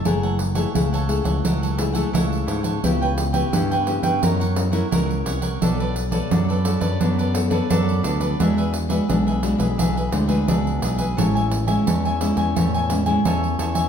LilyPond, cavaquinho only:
\new Staff \with { instrumentName = "Cavaquinho" } { \time 4/4 \key fis \minor \tempo 4 = 86 <e' a' cis'' fis''>16 <a' cis'' fis''>16 r16 <a' cis'' fis''>16 <e' a' cis'' fis''>16 <a' cis'' fis''>8 <a' cis'' fis''>16 <e' a' cis'' fis''>16 <a' cis'' fis''>16 r16 <a' cis'' fis''>16 <e' a' cis'' fis''>8 <e' a' cis'' fis''>16 <a' cis'' fis''>16 | <e' b' cis'' g''>16 <b' cis'' g''>16 r16 <b' cis'' g''>16 <e' b' cis'' g''>16 <b' cis'' g''>8 <b' cis'' g''>16 <e' ais' cis'' fis''>16 <ais' cis'' fis''>16 r16 <ais' cis'' fis''>16 <e' ais' cis'' fis''>8 <e' ais' cis'' fis''>16 <ais' cis'' fis''>16 | <d' a' b' d''>16 <a' b' d''>16 r16 <a' b' d''>16 <d' a' b' d''>16 <a' b' d''>8 <a' b' d''>16 <d' a' b' d''>16 <a' b' d''>16 r16 <a' b' d''>16 <d' a' b' d''>8 <d' a' b' d''>16 <a' b' d''>16 | <d' gis' b' e''>16 <gis' b' e''>16 r16 <gis' b' e''>16 <d' gis' b' e''>16 <gis' b' e''>8 <gis' b' e''>16 <d' gis' b' e''>16 <gis' b' e''>16 r16 <gis' b' e''>16 <d' gis' b' e''>8 <d' gis' b' e''>16 <gis' b' e''>16 |
<a' cis'' e'' gis''>16 <cis'' e'' gis''>16 r16 <cis'' e'' gis''>16 <a' cis'' e'' gis''>16 <cis'' e'' gis''>8 <cis'' e'' gis''>16 <a' cis'' e'' gis''>16 <cis'' e'' gis''>16 r16 <cis'' e'' gis''>16 <a' cis'' e'' gis''>8 <a' cis'' e'' gis''>16 <cis'' e'' gis''>16 | }